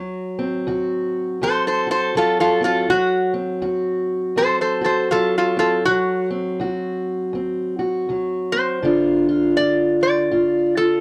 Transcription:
Already playing: steel-string acoustic guitar D2 F#3 F#4
0.39 steel-string acoustic guitar C4
0.67 steel-string acoustic guitar D2 F#4
1.42 steel-string acoustic guitar D2 C4, resonator guitar played with a steel bar A4 C5
1.67 resonator guitar played with a steel bar A4 C5
1.87 steel-string acoustic guitar F#4
1.91 resonator guitar played with a steel bar A4 C5
2.14 steel-string acoustic guitar D2 F#3, resonator guitar played with a steel bar F4 A4
2.40 resonator guitar played with a steel bar F4 A4
2.61 steel-string acoustic guitar C4, resonator guitar played with a steel bar F4
2.65 resonator guitar played with a steel bar A4
2.88 steel-string acoustic guitar D2 F#3, resonator guitar played with a steel bar F#4
3.34 steel-string acoustic guitar C4
3.62 steel-string acoustic guitar D2 F#4
4.36 steel-string acoustic guitar D2 C4, resonator guitar played with a steel bar A4 C5
4.61 resonator guitar played with a steel bar A4 C5
4.81 steel-string acoustic guitar F#4, resonator guitar played with a steel bar A4
4.86 resonator guitar played with a steel bar C5
5.11 steel-string acoustic guitar D2 F#3, resonator guitar played with a steel bar F4 A4
5.38 resonator guitar played with a steel bar F4 A4
5.57 steel-string acoustic guitar C4, resonator guitar played with a steel bar F4 A4
5.85 steel-string acoustic guitar D2 F#3, resonator guitar played with a steel bar F#4
6.30 steel-string acoustic guitar C4
6.60 steel-string acoustic guitar D2 F#4
7.33 steel-string acoustic guitar D2 C4
7.79 steel-string acoustic guitar F#4
8.09 steel-string acoustic guitar D2 F#3
8.52 steel-string acoustic guitar C4, resonator guitar played with a steel bar C5
8.82 steel-string acoustic guitar G2 D3 D4 F4
9.29 steel-string acoustic guitar F4
9.57 steel-string acoustic guitar G2 F4, resonator guitar played with a steel bar D5
10.03 resonator guitar played with a steel bar D5
10.31 steel-string acoustic guitar G2 F4
10.77 steel-string acoustic guitar F4, resonator guitar played with a steel bar A4

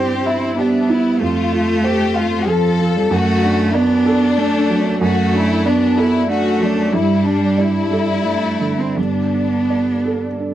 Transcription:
Already playing: felt piano G2 E4 C5, cello C4, violin section G4
0.26 violin section E4, felt piano E5
0.57 cello B3, violin section D4, felt piano G4
0.90 violin section E4, felt piano E4
1.21 felt piano F2, cello A3, violin section F4
1.53 felt piano F4
1.84 violin section G4, felt piano C5
2.15 violin section F4, felt piano F5
2.47 cello F3, felt piano A4, violin section A4
2.79 felt piano F4
2.96 cello G3
3.10 felt piano F#2, cello A3, violin section F#4
3.43 felt piano D4
3.74 cello B3, violin section D4, felt piano D5
4.06 felt piano A4
4.37 cello A3, felt piano D4
4.70 felt piano F#3
5.01 felt piano F#2, cello A3, violin section F#4
5.33 felt piano D4, violin section E4
5.65 cello B3, violin section D4, felt piano D5
5.98 violin section E4, felt piano A4
6.29 cello A3, felt piano D4, violin section F#4
6.60 felt piano F#3, violin section D4
6.93 felt piano G2, cello G3, violin section E4
7.25 violin section D4, felt piano D4
7.58 violin section E4, felt piano D5
7.91 cello G3, felt piano A4
8.24 cello A3, felt piano D4
8.61 felt piano D3
8.79 cello C4
8.96 felt piano G2, cello B3, violin section D4
9.33 felt piano D4
9.70 felt piano D5
10.05 felt piano A4
10.40 felt piano D4

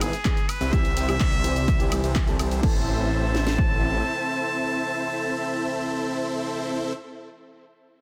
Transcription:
0.01 detuned saw bass G#1, supersaw synth B3 E4 G#4 B4 E5, muted trumpet G#4, open hi-hat, ride, high woodblock, shaker
0.13 closed hi-hat, shaker
0.25 grand piano G#2 E3 G#3 B3 G#4, kick, clap, closed hi-hat, shaker
0.37 closed hi-hat, shaker
0.49 muted trumpet B4, open hi-hat, ride, high woodblock, shaker
0.61 detuned saw bass C2, supersaw synth C4 E4 G4 C5 E5, closed hi-hat, shaker
0.72 grand piano E3 G3 C4 G4, muted trumpet E5, kick, closed hi-hat, shaker
0.85 closed hi-hat, shaker
0.96 detuned saw bass C2, supersaw synth C4 E4 G4 C5 G5, open hi-hat, ride, shaker
1.08 grand piano E3 G3 C4 G4, closed hi-hat, high woodblock, shaker
1.20 detuned saw bass C2, supersaw synth C4 E4 G4 C5 D5, kick, clap, closed hi-hat, shaker
1.32 closed hi-hat, shaker
1.44 grand piano E3 G3 C4 C5, open hi-hat, ride, shaker
1.56 closed hi-hat, shaker
1.68 kick, closed hi-hat, shaker
1.79 grand piano E3 G3 C4 G4, closed hi-hat, shaker
1.91 grand piano E3 G3 C4 C5, open hi-hat, ride, high woodblock, shaker
2.04 detuned saw bass C2, supersaw synth C4 E4 G4 C5 E5, closed hi-hat, shaker
2.15 kick, clap, closed hi-hat, shaker
2.27 grand piano E3 G3 C4 A4, closed hi-hat, shaker
2.39 detuned saw bass C2, supersaw synth C4 E4 G4 C5 D5, open hi-hat, ride, high woodblock, shaker
2.51 detuned saw bass C2, supersaw synth C4 E4 G4 C5 E5, closed hi-hat, shaker
2.61 detuned saw bass A1, grand piano E3 A3 C4 A4, supersaw synth C4 E4 A4 C5 E5, muted trumpet A5, kick, crash
3.35 snare
3.47 snare
3.58 kick

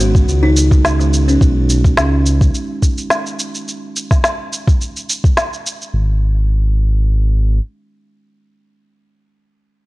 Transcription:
Already playing: analog synth bass G#1
0.00 kalimba B3, shaker
0.15 kick, shaker
0.28 analog synth bass C#2, shaker
0.43 kalimba D#4
0.57 shaker
0.71 kalimba G#3, kick, shaker
0.85 snare, shaker
0.99 kalimba G#3, shaker
1.13 shaker
1.28 kalimba C#4, shaker
1.41 analog synth bass B1, kick, shaker
1.70 shaker
1.84 kick, shaker
1.97 analog synth bass C#2, snare, shaker
2.26 shaker
2.41 kick, shaker
2.54 shaker
2.82 kick, shaker
2.98 shaker
3.10 snare, shaker
3.26 shaker
3.39 shaker
3.55 shaker
3.68 shaker
3.96 shaker
4.11 kick, snare, shaker
4.24 snare, shaker
4.53 shaker
4.68 kick, shaker
4.81 shaker
4.97 shaker
5.10 shaker
5.24 kick, shaker
5.37 snare, shaker
5.53 shaker
5.66 shaker
5.82 shaker
5.94 analog synth bass G#1

